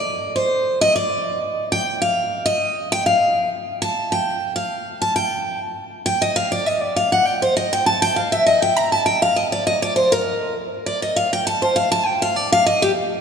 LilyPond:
\new Staff \with { instrumentName = "Steel-string acoustic guitar" } { \time 4/4 \key g \minor \tempo 4 = 200 d''4 c''4. ees''8 d''4~ | d''8 r4 g''4 f''4. | ees''4. g''8 f''4. r8 | r8 a''4 g''4. f''4~ |
f''8 a''8 g''4. r4. | g''8 ees''8 f''8 d''8 ees''8 d''8 f''8 fis''8 | g''8 c''8 ees''8 g''8 a''8 g''8 f''8 e''8 | ees''8 g''8 bes''8 a''8 g''8 f''8 ees''8 d''8 |
ees''8 d''8 c''8 bes'4. r4 | d''8 ees''8 f''8 g''8 a''8 c''8 f''8 a''8 | g''8 f''8 d''8 f''8 ees''8 g'8 r4 | }